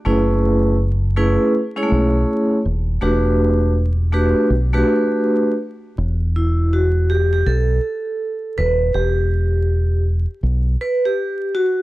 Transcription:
0, 0, Header, 1, 3, 480
1, 0, Start_track
1, 0, Tempo, 740741
1, 35, Time_signature, 4, 2, 24, 8
1, 7659, End_track
2, 0, Start_track
2, 0, Title_t, "Vibraphone"
2, 0, Program_c, 0, 11
2, 33, Note_on_c, 0, 57, 80
2, 35, Note_on_c, 0, 61, 74
2, 37, Note_on_c, 0, 64, 75
2, 39, Note_on_c, 0, 68, 69
2, 41, Note_on_c, 0, 71, 81
2, 489, Note_off_c, 0, 57, 0
2, 491, Note_off_c, 0, 61, 0
2, 492, Note_off_c, 0, 64, 0
2, 493, Note_off_c, 0, 68, 0
2, 493, Note_off_c, 0, 71, 0
2, 754, Note_on_c, 0, 57, 82
2, 755, Note_on_c, 0, 61, 80
2, 757, Note_on_c, 0, 64, 77
2, 758, Note_on_c, 0, 68, 78
2, 761, Note_on_c, 0, 71, 93
2, 982, Note_off_c, 0, 57, 0
2, 983, Note_off_c, 0, 61, 0
2, 984, Note_off_c, 0, 64, 0
2, 984, Note_off_c, 0, 68, 0
2, 986, Note_off_c, 0, 71, 0
2, 1141, Note_on_c, 0, 56, 63
2, 1143, Note_on_c, 0, 61, 73
2, 1146, Note_on_c, 0, 64, 74
2, 1148, Note_on_c, 0, 68, 76
2, 1151, Note_on_c, 0, 73, 89
2, 1175, Note_off_c, 0, 56, 0
2, 1184, Note_on_c, 0, 57, 85
2, 1655, Note_off_c, 0, 61, 0
2, 1656, Note_off_c, 0, 64, 0
2, 1657, Note_off_c, 0, 68, 0
2, 1659, Note_off_c, 0, 73, 0
2, 1676, Note_off_c, 0, 57, 0
2, 1952, Note_on_c, 0, 57, 82
2, 1954, Note_on_c, 0, 62, 73
2, 1956, Note_on_c, 0, 66, 69
2, 1957, Note_on_c, 0, 67, 74
2, 1959, Note_on_c, 0, 71, 90
2, 2409, Note_off_c, 0, 57, 0
2, 2410, Note_off_c, 0, 62, 0
2, 2411, Note_off_c, 0, 66, 0
2, 2412, Note_off_c, 0, 67, 0
2, 2413, Note_off_c, 0, 71, 0
2, 2674, Note_on_c, 0, 57, 76
2, 2674, Note_on_c, 0, 62, 71
2, 2676, Note_on_c, 0, 66, 75
2, 2680, Note_on_c, 0, 67, 72
2, 2682, Note_on_c, 0, 71, 93
2, 2902, Note_off_c, 0, 57, 0
2, 2902, Note_off_c, 0, 62, 0
2, 2904, Note_off_c, 0, 66, 0
2, 2905, Note_off_c, 0, 67, 0
2, 2907, Note_off_c, 0, 71, 0
2, 3065, Note_on_c, 0, 57, 79
2, 3067, Note_on_c, 0, 62, 71
2, 3069, Note_on_c, 0, 66, 78
2, 3072, Note_on_c, 0, 67, 74
2, 3073, Note_on_c, 0, 71, 90
2, 3576, Note_off_c, 0, 57, 0
2, 3577, Note_off_c, 0, 62, 0
2, 3578, Note_off_c, 0, 66, 0
2, 3579, Note_off_c, 0, 67, 0
2, 3580, Note_off_c, 0, 71, 0
2, 4122, Note_on_c, 0, 64, 73
2, 4362, Note_on_c, 0, 66, 76
2, 4366, Note_off_c, 0, 64, 0
2, 4599, Note_on_c, 0, 67, 83
2, 4606, Note_off_c, 0, 66, 0
2, 4739, Note_off_c, 0, 67, 0
2, 4749, Note_on_c, 0, 67, 82
2, 4838, Note_off_c, 0, 67, 0
2, 4838, Note_on_c, 0, 69, 84
2, 5557, Note_on_c, 0, 71, 97
2, 5578, Note_off_c, 0, 69, 0
2, 5795, Note_on_c, 0, 67, 79
2, 5803, Note_off_c, 0, 71, 0
2, 6489, Note_off_c, 0, 67, 0
2, 7005, Note_on_c, 0, 71, 92
2, 7157, Note_off_c, 0, 71, 0
2, 7164, Note_on_c, 0, 67, 79
2, 7461, Note_off_c, 0, 67, 0
2, 7483, Note_on_c, 0, 66, 83
2, 7659, Note_off_c, 0, 66, 0
2, 7659, End_track
3, 0, Start_track
3, 0, Title_t, "Fingered electric bass"
3, 0, Program_c, 1, 33
3, 40, Note_on_c, 1, 30, 103
3, 884, Note_off_c, 1, 30, 0
3, 1242, Note_on_c, 1, 35, 88
3, 1447, Note_off_c, 1, 35, 0
3, 1720, Note_on_c, 1, 27, 91
3, 1926, Note_off_c, 1, 27, 0
3, 1957, Note_on_c, 1, 28, 104
3, 2803, Note_off_c, 1, 28, 0
3, 2917, Note_on_c, 1, 35, 88
3, 3125, Note_off_c, 1, 35, 0
3, 3876, Note_on_c, 1, 28, 92
3, 4810, Note_off_c, 1, 28, 0
3, 4836, Note_on_c, 1, 35, 82
3, 5044, Note_off_c, 1, 35, 0
3, 5560, Note_on_c, 1, 27, 81
3, 5766, Note_off_c, 1, 27, 0
3, 5796, Note_on_c, 1, 28, 97
3, 6642, Note_off_c, 1, 28, 0
3, 6758, Note_on_c, 1, 35, 92
3, 6965, Note_off_c, 1, 35, 0
3, 7659, End_track
0, 0, End_of_file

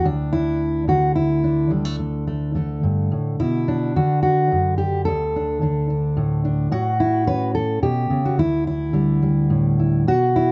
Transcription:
0, 0, Header, 1, 2, 480
1, 0, Start_track
1, 0, Key_signature, 2, "major"
1, 0, Tempo, 556586
1, 42, Time_signature, 3, 2, 24, 8
1, 9071, End_track
2, 0, Start_track
2, 0, Title_t, "Steel-string acoustic guitar"
2, 0, Program_c, 0, 25
2, 39, Note_on_c, 0, 38, 65
2, 47, Note_on_c, 0, 62, 93
2, 281, Note_on_c, 0, 64, 85
2, 756, Note_off_c, 0, 64, 0
2, 756, Note_on_c, 0, 50, 55
2, 758, Note_off_c, 0, 62, 0
2, 766, Note_on_c, 0, 66, 86
2, 993, Note_off_c, 0, 66, 0
2, 996, Note_on_c, 0, 64, 83
2, 1241, Note_on_c, 0, 62, 62
2, 1457, Note_off_c, 0, 38, 0
2, 1468, Note_on_c, 0, 38, 60
2, 1472, Note_off_c, 0, 64, 0
2, 1472, Note_on_c, 0, 55, 44
2, 1595, Note_off_c, 0, 55, 0
2, 1595, Note_on_c, 0, 57, 43
2, 1708, Note_off_c, 0, 57, 0
2, 1718, Note_on_c, 0, 57, 43
2, 1951, Note_off_c, 0, 57, 0
2, 1961, Note_on_c, 0, 57, 45
2, 2188, Note_off_c, 0, 50, 0
2, 2197, Note_off_c, 0, 57, 0
2, 2198, Note_on_c, 0, 50, 55
2, 2207, Note_on_c, 0, 57, 40
2, 2434, Note_off_c, 0, 38, 0
2, 2443, Note_on_c, 0, 43, 59
2, 2684, Note_off_c, 0, 43, 0
2, 2687, Note_on_c, 0, 45, 60
2, 2904, Note_off_c, 0, 57, 0
2, 2925, Note_off_c, 0, 45, 0
2, 2929, Note_on_c, 0, 47, 59
2, 2930, Note_off_c, 0, 62, 0
2, 2930, Note_on_c, 0, 64, 83
2, 3174, Note_on_c, 0, 62, 70
2, 3407, Note_off_c, 0, 50, 0
2, 3413, Note_off_c, 0, 47, 0
2, 3413, Note_off_c, 0, 64, 0
2, 3416, Note_on_c, 0, 50, 59
2, 3419, Note_on_c, 0, 66, 83
2, 3635, Note_off_c, 0, 66, 0
2, 3645, Note_on_c, 0, 66, 93
2, 3896, Note_off_c, 0, 62, 0
2, 3896, Note_on_c, 0, 42, 64
2, 4117, Note_off_c, 0, 66, 0
2, 4121, Note_on_c, 0, 67, 86
2, 4345, Note_off_c, 0, 42, 0
2, 4353, Note_off_c, 0, 67, 0
2, 4356, Note_on_c, 0, 69, 95
2, 4377, Note_on_c, 0, 38, 74
2, 4624, Note_on_c, 0, 62, 45
2, 4834, Note_off_c, 0, 50, 0
2, 4843, Note_off_c, 0, 62, 0
2, 4844, Note_on_c, 0, 50, 60
2, 4854, Note_on_c, 0, 62, 46
2, 5078, Note_off_c, 0, 62, 0
2, 5089, Note_on_c, 0, 62, 46
2, 5319, Note_on_c, 0, 45, 70
2, 5551, Note_off_c, 0, 62, 0
2, 5561, Note_on_c, 0, 62, 52
2, 5767, Note_off_c, 0, 62, 0
2, 5782, Note_off_c, 0, 45, 0
2, 5784, Note_off_c, 0, 69, 0
2, 5791, Note_off_c, 0, 50, 0
2, 5791, Note_on_c, 0, 45, 75
2, 5795, Note_off_c, 0, 38, 0
2, 5796, Note_on_c, 0, 66, 106
2, 6038, Note_on_c, 0, 64, 89
2, 6270, Note_off_c, 0, 64, 0
2, 6272, Note_on_c, 0, 61, 61
2, 6273, Note_on_c, 0, 71, 106
2, 6505, Note_off_c, 0, 71, 0
2, 6506, Note_off_c, 0, 66, 0
2, 6509, Note_on_c, 0, 69, 92
2, 6745, Note_off_c, 0, 45, 0
2, 6746, Note_off_c, 0, 69, 0
2, 6749, Note_on_c, 0, 47, 68
2, 6751, Note_on_c, 0, 67, 90
2, 6983, Note_off_c, 0, 47, 0
2, 6986, Note_on_c, 0, 49, 66
2, 7118, Note_on_c, 0, 66, 75
2, 7196, Note_off_c, 0, 61, 0
2, 7223, Note_on_c, 0, 38, 69
2, 7224, Note_off_c, 0, 49, 0
2, 7225, Note_off_c, 0, 67, 0
2, 7230, Note_off_c, 0, 66, 0
2, 7237, Note_on_c, 0, 64, 94
2, 7470, Note_off_c, 0, 64, 0
2, 7479, Note_on_c, 0, 64, 80
2, 7702, Note_on_c, 0, 50, 62
2, 7708, Note_on_c, 0, 55, 45
2, 7945, Note_off_c, 0, 55, 0
2, 7956, Note_on_c, 0, 55, 43
2, 8194, Note_on_c, 0, 45, 63
2, 8437, Note_off_c, 0, 64, 0
2, 8447, Note_on_c, 0, 64, 49
2, 8655, Note_off_c, 0, 64, 0
2, 8678, Note_off_c, 0, 38, 0
2, 8680, Note_off_c, 0, 45, 0
2, 8682, Note_off_c, 0, 55, 0
2, 8688, Note_on_c, 0, 47, 66
2, 8694, Note_on_c, 0, 66, 102
2, 8933, Note_on_c, 0, 64, 87
2, 9071, Note_off_c, 0, 47, 0
2, 9071, Note_off_c, 0, 50, 0
2, 9071, Note_off_c, 0, 64, 0
2, 9071, Note_off_c, 0, 66, 0
2, 9071, End_track
0, 0, End_of_file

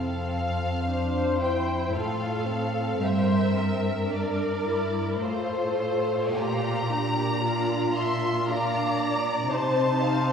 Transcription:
0, 0, Header, 1, 5, 480
1, 0, Start_track
1, 0, Key_signature, -1, "major"
1, 0, Tempo, 1088929
1, 1334, Time_signature, 3, 2, 24, 8
1, 2296, Tempo, 1167315
1, 2776, Tempo, 1043478
1, 4593, End_track
2, 0, Start_track
2, 0, Title_t, "Violin section"
2, 0, Program_c, 0, 48
2, 0, Note_on_c, 0, 77, 53
2, 602, Note_off_c, 0, 77, 0
2, 624, Note_on_c, 0, 79, 42
2, 858, Note_off_c, 0, 79, 0
2, 859, Note_on_c, 0, 77, 50
2, 1327, Note_off_c, 0, 77, 0
2, 1333, Note_on_c, 0, 76, 54
2, 1813, Note_off_c, 0, 76, 0
2, 1816, Note_on_c, 0, 74, 44
2, 2294, Note_on_c, 0, 72, 51
2, 2297, Note_off_c, 0, 74, 0
2, 2766, Note_off_c, 0, 72, 0
2, 2775, Note_on_c, 0, 82, 65
2, 3507, Note_off_c, 0, 82, 0
2, 3507, Note_on_c, 0, 84, 56
2, 3741, Note_on_c, 0, 82, 65
2, 3746, Note_off_c, 0, 84, 0
2, 4210, Note_on_c, 0, 81, 67
2, 4211, Note_off_c, 0, 82, 0
2, 4593, Note_off_c, 0, 81, 0
2, 4593, End_track
3, 0, Start_track
3, 0, Title_t, "Viola section"
3, 0, Program_c, 1, 48
3, 390, Note_on_c, 1, 72, 41
3, 842, Note_off_c, 1, 72, 0
3, 862, Note_on_c, 1, 69, 36
3, 1338, Note_off_c, 1, 69, 0
3, 1338, Note_on_c, 1, 72, 41
3, 1570, Note_off_c, 1, 72, 0
3, 1575, Note_on_c, 1, 70, 37
3, 2296, Note_on_c, 1, 69, 41
3, 2297, Note_off_c, 1, 70, 0
3, 2773, Note_on_c, 1, 67, 40
3, 2776, Note_off_c, 1, 69, 0
3, 3255, Note_off_c, 1, 67, 0
3, 3263, Note_on_c, 1, 65, 45
3, 3734, Note_off_c, 1, 65, 0
3, 3745, Note_on_c, 1, 74, 49
3, 4213, Note_off_c, 1, 74, 0
3, 4215, Note_on_c, 1, 72, 46
3, 4451, Note_off_c, 1, 72, 0
3, 4457, Note_on_c, 1, 72, 45
3, 4593, Note_off_c, 1, 72, 0
3, 4593, End_track
4, 0, Start_track
4, 0, Title_t, "Violin section"
4, 0, Program_c, 2, 48
4, 0, Note_on_c, 2, 60, 31
4, 0, Note_on_c, 2, 69, 33
4, 368, Note_off_c, 2, 60, 0
4, 368, Note_off_c, 2, 69, 0
4, 390, Note_on_c, 2, 72, 35
4, 391, Note_on_c, 2, 62, 34
4, 618, Note_off_c, 2, 62, 0
4, 622, Note_on_c, 2, 64, 37
4, 857, Note_off_c, 2, 64, 0
4, 859, Note_off_c, 2, 72, 0
4, 859, Note_on_c, 2, 65, 35
4, 861, Note_on_c, 2, 69, 34
4, 1092, Note_on_c, 2, 60, 32
4, 1097, Note_off_c, 2, 65, 0
4, 1337, Note_off_c, 2, 69, 0
4, 1337, Note_on_c, 2, 70, 37
4, 1813, Note_off_c, 2, 60, 0
4, 1814, Note_on_c, 2, 62, 37
4, 2055, Note_off_c, 2, 62, 0
4, 2058, Note_on_c, 2, 64, 38
4, 2280, Note_off_c, 2, 70, 0
4, 2293, Note_off_c, 2, 64, 0
4, 2293, Note_on_c, 2, 72, 37
4, 2294, Note_on_c, 2, 65, 37
4, 2765, Note_off_c, 2, 72, 0
4, 2775, Note_off_c, 2, 65, 0
4, 2781, Note_on_c, 2, 65, 39
4, 2781, Note_on_c, 2, 74, 35
4, 3023, Note_off_c, 2, 65, 0
4, 3027, Note_on_c, 2, 62, 39
4, 3257, Note_off_c, 2, 74, 0
4, 3262, Note_on_c, 2, 74, 39
4, 3500, Note_off_c, 2, 74, 0
4, 3506, Note_on_c, 2, 76, 43
4, 3736, Note_off_c, 2, 62, 0
4, 3740, Note_off_c, 2, 76, 0
4, 3741, Note_on_c, 2, 62, 40
4, 3742, Note_on_c, 2, 77, 41
4, 3974, Note_off_c, 2, 77, 0
4, 3982, Note_on_c, 2, 74, 41
4, 4202, Note_off_c, 2, 62, 0
4, 4215, Note_off_c, 2, 74, 0
4, 4215, Note_on_c, 2, 63, 45
4, 4215, Note_on_c, 2, 72, 46
4, 4454, Note_off_c, 2, 72, 0
4, 4460, Note_on_c, 2, 77, 45
4, 4593, Note_off_c, 2, 63, 0
4, 4593, Note_off_c, 2, 77, 0
4, 4593, End_track
5, 0, Start_track
5, 0, Title_t, "Cello section"
5, 0, Program_c, 3, 48
5, 0, Note_on_c, 3, 41, 39
5, 838, Note_off_c, 3, 41, 0
5, 858, Note_on_c, 3, 45, 34
5, 1326, Note_off_c, 3, 45, 0
5, 1339, Note_on_c, 3, 43, 41
5, 2281, Note_off_c, 3, 43, 0
5, 2299, Note_on_c, 3, 45, 38
5, 2775, Note_on_c, 3, 46, 46
5, 2777, Note_off_c, 3, 45, 0
5, 4195, Note_off_c, 3, 46, 0
5, 4213, Note_on_c, 3, 48, 49
5, 4593, Note_off_c, 3, 48, 0
5, 4593, End_track
0, 0, End_of_file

